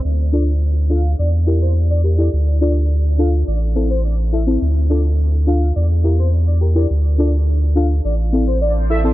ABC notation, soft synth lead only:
X:1
M:4/4
L:1/16
Q:1/4=105
K:Dm
V:1 name="Soft synth lead"
z2 d z3 f2 d z2 c z d z d | z2 d z3 f z d z2 c d z e z | z2 d z3 f2 d z2 c z d z d | z2 d z3 f z d z2 c d z e z |]